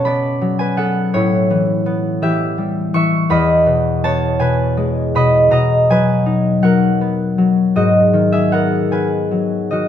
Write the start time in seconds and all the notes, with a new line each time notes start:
Already playing: B2 C#4 F#4 B4 C#5 F#5 A5
0.05 B3 D5 B5
0.41 F#3
0.59 B4 G#5
0.77 B3 A4 F#5
1.14 A2 E4 C#5
1.50 E3
1.86 B3
2.22 E3 G4 E5
2.58 G3
2.94 E3 E5 C#6
3.30 E2 D#5 B5
3.66 B2
4.04 B3 C#5 A5
4.39 B2 B4 G#5
4.77 G#3
5.15 B2 D#5 B5
5.51 B2 D#5 A#5
5.90 F#3 B4 G#5
6.26 D#4
6.63 F#3 A#4 F#5
7.01 B3
7.38 F#3
7.76 G#2 F#4 D#5
8.13 D#3
8.32 G#4 E5
8.52 B3 A#4 F#5
8.91 D#3 B4 G#5
9.31 F#3
9.71 D#3 F#4 D#5